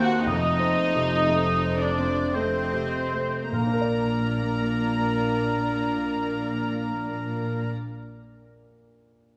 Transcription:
Already playing: D#2 A#3 C4 A#4 C5
0.02 F#4 F#5
0.25 F1 F2 A3 D#4 A4 D#5
0.60 C4
0.78 C5
0.96 C3
1.28 A3 C5
1.64 C5
1.79 D4 D5
1.99 C4
2.34 A3 C4 C5 D#5
2.74 C3
3.14 A3
3.51 A#1 A#2 A#3 D4 A#4 D5 A#5
3.60 A#3
3.67 D4
3.74 A#4
3.81 D5

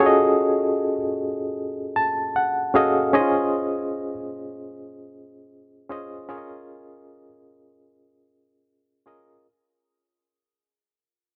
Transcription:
Already playing: C#4 F4 F#4
0.00 G#4 A4
0.06 D#5
1.96 A5
2.36 F#5
2.74 C#4 F#4 G#4 A4 D#5 F5
3.13 C#4 D#4 G#4 C5 D#5
3.20 F4
5.89 C#4 F4 G#4 C5 D#5
6.29 C#4 F4 G#4 A#4 C#5
6.38 D#5
9.06 C#4 F4 G#4 A#4 D#5

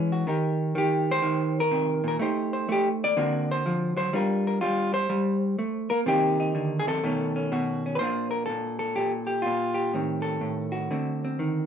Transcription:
Already playing: E3 G#3 C#4 G#4
0.12 F#4
0.27 D#3 D#4 G4 A#4
0.75 D#3 G4
1.11 C5
1.22 D#3
1.60 A#4
1.71 C3
2.04 A#2
2.08 A#4
2.19 A3 D#4 G4 C5
2.53 C5
2.69 A3 G4
3.04 D5
3.17 D3 A#3 C4 F#4
3.51 C5
3.66 F3
3.97 F#3 C5
4.13 G3 D4 F4 A#4
4.47 A#4
4.61 G3 F4
4.94 C5
5.10 G3
5.59 A3
5.90 A#3 A#4
6.06 C3 D#3 A#3 D#4 G4
6.40 D#4
6.55 D3
6.79 G#4
6.87 C3 A4
7.04 B2 D#3 A3 C#4
7.36 C#4
7.52 B2 F#4
7.86 C#4
7.95 B4 C5
8.01 A#2 A#3 D4 F4
8.31 A#4
8.46 A#2 A4
8.79 A4
8.96 A#2 G4
9.27 G4
9.42 F4
9.46 A#2
9.74 G4
9.93 A2 D#3 C4
10.22 A4
10.41 A2
10.72 F#4
10.91 D3 A3 C4
11.25 C4
11.39 D#3

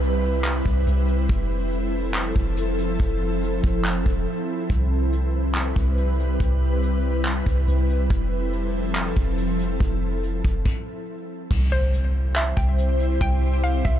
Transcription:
Already playing: C2 G3 C4 E4 B4, downlifter
0.02 closed hi-hat
0.23 open hi-hat
0.44 clap, closed hi-hat
0.66 C2, kick, closed hi-hat
0.87 C2, closed hi-hat
1.08 closed hi-hat
1.29 F1 F3 A4, kick, closed hi-hat
1.72 closed hi-hat
2.14 clap, closed hi-hat
2.36 F1, kick, closed hi-hat
2.57 closed hi-hat
2.79 closed hi-hat
3.00 F1, kick, closed hi-hat
3.42 closed hi-hat
3.64 F1, kick
3.85 clap, closed hi-hat
4.06 E1, kick, closed hi-hat
4.70 C2 G3 B4, kick, closed hi-hat
5.13 closed hi-hat
5.55 clap, closed hi-hat
5.76 C2, kick, closed hi-hat
5.98 closed hi-hat
6.19 closed hi-hat
6.40 C2, kick, closed hi-hat
6.83 closed hi-hat
7.25 clap, closed hi-hat
7.46 C2, kick, closed hi-hat
7.68 C2, closed hi-hat
7.89 closed hi-hat
8.10 F1 F3 C4 E4 A4, kick, closed hi-hat
8.53 closed hi-hat
8.95 clap, closed hi-hat
9.16 F1, kick, closed hi-hat
9.38 closed hi-hat
9.59 closed hi-hat
9.80 F1, kick, closed hi-hat
10.23 closed hi-hat
10.45 F1, kick
10.65 kick, crash
11.51 C2 G3 C4 E4 C5, kick, crash, impact
11.72 C5
11.93 closed hi-hat
12.36 E5, clap, closed hi-hat
12.57 C2 G5, kick, closed hi-hat
12.78 closed hi-hat
13.00 closed hi-hat
13.21 C2 G5, kick, closed hi-hat
13.64 F5, closed hi-hat
13.85 C2 E5, kick

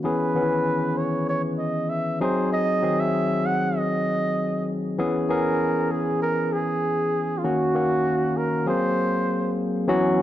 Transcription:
0.04 E3 B3 C#4 G#4 B4
0.35 D#3 B3 C#4 B4
0.42 E3
0.97 C#5
1.29 C#5
1.58 D#5
1.90 E5
2.20 F#3 C4 D#4 G#4 C5
2.53 D#5
2.82 D#3 F#3 C4 G#4
3.00 E5
3.46 F#5
3.77 D#5
4.98 E3 B3 C#4 G#4
5.29 E3 B3 C#4 G#4 A#4
5.91 G#4
6.22 A#4
6.53 G#4
7.38 F4
7.44 D#3 A#3 C#4 F#4
7.75 D#3 A#3 C#4 F#4
8.37 A#4
8.66 F#3 A#3 C4 G#4 C5
9.88 E3 F#3 B3 C#4 F#4

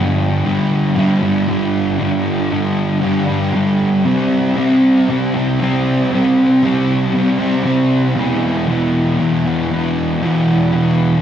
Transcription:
Already playing: G2 D3 G3
0.45 G2 D3 G3
0.96 G2 D3 G3
1.22 D3 G3
1.48 G2 D3 G3
1.99 G2 D3 G3
2.50 G2 D3 G3
3.01 G2 D3 G3
3.26 D3 G3
3.53 G2 D3 G3
4.04 C3 G3 C4
4.56 C3 G3 C4
5.09 C3 G3 C4
5.34 G3 C4
5.59 C3 G3 C4
6.11 C3 G3 C4
6.63 C3 G3 C4
7.14 C3 G3 C4
7.39 G3 C4
7.64 C3 G3 C4
8.16 E2 B2 E3
8.68 E2 B2 E3
9.19 E2 B2 E3
9.45 B2 E3
9.71 E2 B2 E3
10.22 E2 B2 E3
10.72 E2 B2 E3

